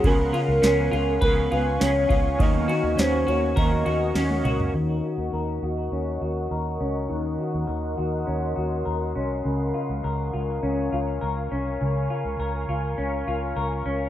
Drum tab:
RD |x-x-x-x-x-x-x-x-|x-x-x-x-x-x-x-x-|----------------|----------------|
TB |----x-------x---|----x-----------|----------------|----------------|
SD |----o-------o---|----o-------o---|----------------|----------------|
T1 |----------------|-------------o--|----------------|----------------|
T2 |----------------|--------------o-|----------------|----------------|
FT |----------------|---------------o|----------------|----------------|
BD |o-------o-----o-|o-------o-------|----------------|----------------|

RD |----------------|----------------|
TB |----------------|----------------|
SD |----------------|----------------|
T1 |----------------|----------------|
T2 |----------------|----------------|
FT |----------------|----------------|
BD |----------------|----------------|